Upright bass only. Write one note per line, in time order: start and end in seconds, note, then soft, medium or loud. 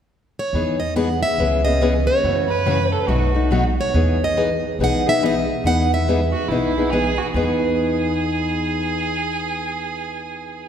0.53 1.21 E2 medium
1.38 2.06 C#2 medium
2.23 2.92 F#2 medium
3.08 3.77 B1 medium
3.94 4.62 E2 medium
4.79 5.47 B1 medium
5.64 6.32 E2 medium
6.49 7.17 B1 medium
7.34 10.68 E2 medium